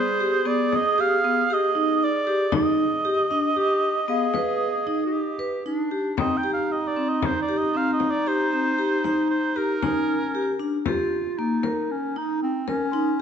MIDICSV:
0, 0, Header, 1, 6, 480
1, 0, Start_track
1, 0, Key_signature, -3, "minor"
1, 0, Tempo, 515021
1, 2352, Time_signature, 7, 2, 24, 8
1, 3315, Tempo, 520833
1, 12217, End_track
2, 0, Start_track
2, 0, Title_t, "Celesta"
2, 0, Program_c, 0, 8
2, 0, Note_on_c, 0, 74, 53
2, 267, Note_off_c, 0, 74, 0
2, 3811, Note_on_c, 0, 77, 64
2, 4594, Note_off_c, 0, 77, 0
2, 5736, Note_on_c, 0, 79, 50
2, 6523, Note_off_c, 0, 79, 0
2, 11941, Note_on_c, 0, 84, 52
2, 12217, Note_off_c, 0, 84, 0
2, 12217, End_track
3, 0, Start_track
3, 0, Title_t, "Oboe"
3, 0, Program_c, 1, 68
3, 0, Note_on_c, 1, 72, 90
3, 436, Note_on_c, 1, 74, 87
3, 450, Note_off_c, 1, 72, 0
3, 705, Note_on_c, 1, 75, 104
3, 719, Note_off_c, 1, 74, 0
3, 937, Note_on_c, 1, 77, 94
3, 951, Note_off_c, 1, 75, 0
3, 1432, Note_on_c, 1, 75, 90
3, 1446, Note_off_c, 1, 77, 0
3, 1902, Note_on_c, 1, 74, 85
3, 1916, Note_off_c, 1, 75, 0
3, 2368, Note_off_c, 1, 74, 0
3, 2387, Note_on_c, 1, 75, 82
3, 5227, Note_off_c, 1, 75, 0
3, 5747, Note_on_c, 1, 75, 78
3, 5910, Note_on_c, 1, 79, 82
3, 5924, Note_off_c, 1, 75, 0
3, 6056, Note_off_c, 1, 79, 0
3, 6062, Note_on_c, 1, 77, 73
3, 6230, Note_on_c, 1, 75, 69
3, 6244, Note_off_c, 1, 77, 0
3, 6375, Note_on_c, 1, 74, 70
3, 6389, Note_off_c, 1, 75, 0
3, 6569, Note_on_c, 1, 75, 70
3, 6583, Note_off_c, 1, 74, 0
3, 6725, Note_on_c, 1, 72, 77
3, 6739, Note_off_c, 1, 75, 0
3, 6868, Note_off_c, 1, 72, 0
3, 6873, Note_on_c, 1, 74, 67
3, 7021, Note_on_c, 1, 75, 77
3, 7034, Note_off_c, 1, 74, 0
3, 7194, Note_on_c, 1, 77, 79
3, 7208, Note_off_c, 1, 75, 0
3, 7338, Note_off_c, 1, 77, 0
3, 7343, Note_on_c, 1, 75, 65
3, 7506, Note_on_c, 1, 74, 73
3, 7520, Note_off_c, 1, 75, 0
3, 7667, Note_on_c, 1, 72, 74
3, 7681, Note_off_c, 1, 74, 0
3, 8600, Note_off_c, 1, 72, 0
3, 8605, Note_on_c, 1, 72, 69
3, 8854, Note_on_c, 1, 70, 79
3, 8868, Note_off_c, 1, 72, 0
3, 9810, Note_off_c, 1, 70, 0
3, 12217, End_track
4, 0, Start_track
4, 0, Title_t, "Vibraphone"
4, 0, Program_c, 2, 11
4, 191, Note_on_c, 2, 67, 74
4, 326, Note_off_c, 2, 67, 0
4, 426, Note_on_c, 2, 59, 71
4, 696, Note_off_c, 2, 59, 0
4, 914, Note_on_c, 2, 67, 75
4, 1048, Note_off_c, 2, 67, 0
4, 1161, Note_on_c, 2, 59, 68
4, 1293, Note_off_c, 2, 59, 0
4, 1400, Note_on_c, 2, 67, 73
4, 1532, Note_off_c, 2, 67, 0
4, 1632, Note_on_c, 2, 63, 71
4, 1901, Note_off_c, 2, 63, 0
4, 2115, Note_on_c, 2, 67, 75
4, 2248, Note_off_c, 2, 67, 0
4, 2352, Note_on_c, 2, 63, 85
4, 2620, Note_off_c, 2, 63, 0
4, 2842, Note_on_c, 2, 67, 75
4, 2974, Note_off_c, 2, 67, 0
4, 3082, Note_on_c, 2, 62, 65
4, 3215, Note_off_c, 2, 62, 0
4, 3321, Note_on_c, 2, 67, 60
4, 3587, Note_off_c, 2, 67, 0
4, 3797, Note_on_c, 2, 59, 66
4, 3931, Note_off_c, 2, 59, 0
4, 4043, Note_on_c, 2, 71, 62
4, 4310, Note_off_c, 2, 71, 0
4, 4524, Note_on_c, 2, 63, 61
4, 4794, Note_off_c, 2, 63, 0
4, 5006, Note_on_c, 2, 71, 69
4, 5142, Note_off_c, 2, 71, 0
4, 5253, Note_on_c, 2, 63, 62
4, 5387, Note_off_c, 2, 63, 0
4, 5486, Note_on_c, 2, 67, 61
4, 5623, Note_off_c, 2, 67, 0
4, 5726, Note_on_c, 2, 60, 72
4, 5863, Note_off_c, 2, 60, 0
4, 5968, Note_on_c, 2, 67, 60
4, 6238, Note_off_c, 2, 67, 0
4, 6453, Note_on_c, 2, 60, 59
4, 6722, Note_off_c, 2, 60, 0
4, 6937, Note_on_c, 2, 67, 68
4, 7071, Note_off_c, 2, 67, 0
4, 7175, Note_on_c, 2, 60, 68
4, 7444, Note_off_c, 2, 60, 0
4, 7656, Note_on_c, 2, 67, 68
4, 7790, Note_off_c, 2, 67, 0
4, 7895, Note_on_c, 2, 60, 60
4, 8029, Note_off_c, 2, 60, 0
4, 8133, Note_on_c, 2, 67, 72
4, 8268, Note_off_c, 2, 67, 0
4, 8379, Note_on_c, 2, 63, 67
4, 8646, Note_off_c, 2, 63, 0
4, 8847, Note_on_c, 2, 67, 70
4, 8984, Note_off_c, 2, 67, 0
4, 9092, Note_on_c, 2, 63, 76
4, 9360, Note_off_c, 2, 63, 0
4, 9573, Note_on_c, 2, 67, 73
4, 9706, Note_off_c, 2, 67, 0
4, 9801, Note_on_c, 2, 62, 63
4, 9937, Note_off_c, 2, 62, 0
4, 10048, Note_on_c, 2, 67, 66
4, 10314, Note_off_c, 2, 67, 0
4, 10531, Note_on_c, 2, 58, 68
4, 10662, Note_off_c, 2, 58, 0
4, 10760, Note_on_c, 2, 70, 62
4, 11028, Note_off_c, 2, 70, 0
4, 11245, Note_on_c, 2, 63, 63
4, 11509, Note_off_c, 2, 63, 0
4, 11720, Note_on_c, 2, 70, 70
4, 11852, Note_off_c, 2, 70, 0
4, 11955, Note_on_c, 2, 63, 76
4, 12088, Note_off_c, 2, 63, 0
4, 12217, End_track
5, 0, Start_track
5, 0, Title_t, "Clarinet"
5, 0, Program_c, 3, 71
5, 0, Note_on_c, 3, 68, 87
5, 3026, Note_off_c, 3, 68, 0
5, 3320, Note_on_c, 3, 67, 89
5, 3740, Note_off_c, 3, 67, 0
5, 3740, Note_on_c, 3, 67, 61
5, 3806, Note_on_c, 3, 68, 91
5, 3819, Note_off_c, 3, 67, 0
5, 4694, Note_off_c, 3, 68, 0
5, 4700, Note_on_c, 3, 66, 61
5, 4759, Note_on_c, 3, 67, 77
5, 4773, Note_off_c, 3, 66, 0
5, 5247, Note_off_c, 3, 67, 0
5, 5253, Note_on_c, 3, 62, 70
5, 5702, Note_off_c, 3, 62, 0
5, 5735, Note_on_c, 3, 63, 90
5, 9093, Note_on_c, 3, 61, 76
5, 9107, Note_off_c, 3, 63, 0
5, 9801, Note_off_c, 3, 61, 0
5, 10049, Note_on_c, 3, 65, 86
5, 10527, Note_on_c, 3, 63, 83
5, 10541, Note_off_c, 3, 65, 0
5, 11014, Note_on_c, 3, 61, 75
5, 11028, Note_off_c, 3, 63, 0
5, 11258, Note_on_c, 3, 63, 83
5, 11272, Note_off_c, 3, 61, 0
5, 11487, Note_off_c, 3, 63, 0
5, 11491, Note_on_c, 3, 60, 82
5, 11706, Note_off_c, 3, 60, 0
5, 11728, Note_on_c, 3, 61, 85
5, 12217, Note_off_c, 3, 61, 0
5, 12217, End_track
6, 0, Start_track
6, 0, Title_t, "Frame drum"
6, 675, Note_on_c, 9, 64, 46
6, 768, Note_off_c, 9, 64, 0
6, 914, Note_on_c, 9, 64, 19
6, 1007, Note_off_c, 9, 64, 0
6, 2349, Note_on_c, 9, 64, 60
6, 2442, Note_off_c, 9, 64, 0
6, 2841, Note_on_c, 9, 64, 20
6, 2934, Note_off_c, 9, 64, 0
6, 3081, Note_on_c, 9, 64, 20
6, 3174, Note_off_c, 9, 64, 0
6, 3320, Note_on_c, 9, 64, 20
6, 3412, Note_off_c, 9, 64, 0
6, 4034, Note_on_c, 9, 64, 45
6, 4126, Note_off_c, 9, 64, 0
6, 4518, Note_on_c, 9, 64, 19
6, 4610, Note_off_c, 9, 64, 0
6, 4998, Note_on_c, 9, 64, 20
6, 5090, Note_off_c, 9, 64, 0
6, 5730, Note_on_c, 9, 64, 58
6, 5822, Note_off_c, 9, 64, 0
6, 6695, Note_on_c, 9, 64, 61
6, 6787, Note_off_c, 9, 64, 0
6, 7409, Note_on_c, 9, 64, 44
6, 7501, Note_off_c, 9, 64, 0
6, 8371, Note_on_c, 9, 64, 42
6, 8463, Note_off_c, 9, 64, 0
6, 8851, Note_on_c, 9, 64, 18
6, 8943, Note_off_c, 9, 64, 0
6, 9092, Note_on_c, 9, 64, 51
6, 9184, Note_off_c, 9, 64, 0
6, 10041, Note_on_c, 9, 64, 55
6, 10133, Note_off_c, 9, 64, 0
6, 10757, Note_on_c, 9, 64, 46
6, 10849, Note_off_c, 9, 64, 0
6, 11719, Note_on_c, 9, 64, 47
6, 11811, Note_off_c, 9, 64, 0
6, 12217, End_track
0, 0, End_of_file